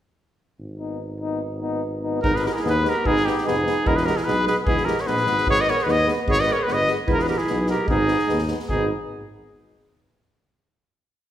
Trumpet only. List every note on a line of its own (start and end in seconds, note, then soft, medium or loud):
2.23 2.38 A#4 medium
2.36 2.48 B4 medium
2.46 2.53 A#4 medium
2.52 2.55 G#4 medium
2.52 2.59 A#4 medium
2.58 2.71 G#4 medium
2.69 2.91 B4 medium
2.89 3.08 A#4 medium
3.06 3.27 G#4 loud
3.26 3.48 G4 medium
3.46 3.89 G#4 medium
3.88 3.97 A#4 medium
3.96 4.07 B4 medium
4.05 4.18 A#4 medium
4.17 4.26 G#4 medium
4.24 4.45 B4 loud
4.47 4.56 B4 medium
4.65 4.87 G#4 medium
4.85 5.02 A#4 medium
5.01 5.08 C#5 medium
5.07 5.47 B4 loud
5.50 5.63 C#5 loud
5.61 5.71 D#5 medium
5.70 5.85 C#5 medium
5.83 5.92 B4 medium
5.91 6.10 D#5 loud
6.31 6.42 C#5 loud
6.40 6.54 D#5 medium
6.53 6.64 C#5 medium
6.63 6.74 B4 medium
6.73 6.91 D#5 loud
7.12 7.24 A#4 loud
7.22 7.28 B4 medium
7.28 7.39 A#4 medium
7.38 7.69 G#4 medium
7.69 7.88 A#4 medium
7.90 8.47 G#4 medium
8.69 8.89 G#4 medium